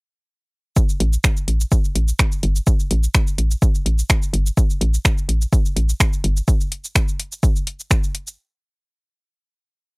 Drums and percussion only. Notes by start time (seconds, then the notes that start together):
0.76 kick, cabasa
0.89 cabasa
1.00 closed hi-hat
1.13 cabasa
1.24 finger snap, kick, cabasa
1.37 cabasa
1.48 closed hi-hat
1.61 cabasa
1.72 kick, cabasa
1.84 cabasa
1.95 closed hi-hat
2.08 cabasa
2.19 finger snap, kick, cabasa
2.32 cabasa
2.43 closed hi-hat
2.56 cabasa
2.67 kick, cabasa
2.80 cabasa
2.91 closed hi-hat
3.04 cabasa
3.15 finger snap, kick, cabasa
3.27 cabasa
3.38 closed hi-hat
3.51 cabasa
3.62 kick, cabasa
3.75 cabasa
3.86 closed hi-hat
3.99 cabasa
4.10 finger snap, kick, cabasa
4.23 cabasa
4.34 closed hi-hat
4.46 cabasa
4.57 kick, cabasa
4.70 cabasa
4.81 closed hi-hat
4.94 cabasa
5.05 finger snap, kick, cabasa
5.18 cabasa
5.29 closed hi-hat
5.42 cabasa
5.53 kick, cabasa
5.66 cabasa
5.77 closed hi-hat
5.89 cabasa
6.00 finger snap, kick, cabasa
6.13 cabasa
6.24 closed hi-hat
6.37 cabasa
6.48 kick, cabasa
6.61 cabasa
6.72 closed hi-hat
6.85 cabasa
6.95 finger snap, kick, cabasa
7.08 cabasa
7.20 closed hi-hat
7.32 cabasa
7.43 kick, cabasa
7.56 cabasa
7.67 closed hi-hat
7.80 cabasa
7.91 finger snap, kick, cabasa
8.04 cabasa
8.15 closed hi-hat
8.27 cabasa